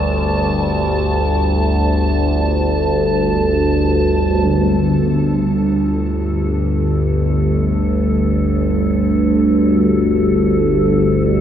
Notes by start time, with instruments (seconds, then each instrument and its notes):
Already playing: synth drone G1 D2, analog synth pad G4 A4 D5, ambient pad A5
4.49 synth drone G1 D2, ambient pad A4